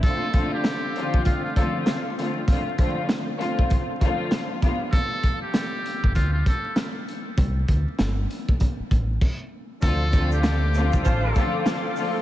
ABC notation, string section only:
X:1
M:4/4
L:1/8
Q:"Swing 16ths" 1/4=98
K:Dm
V:1 name="String section"
[D,F,A,CF] [D,F,A,CF] z [D,F,A,CF] z [D,F,A,CF]2 [D,F,A,CF] | [D,F,A,CF] [D,F,A,CF] z [D,F,A,CF] z [D,F,A,CF]2 [D,F,G,=B,F] | z8 | z8 |
[D,F,A,CF] [D,F,A,CF] z [D,F,A,CF] z [D,F,A,CF]2 [D,F,A,CF] |]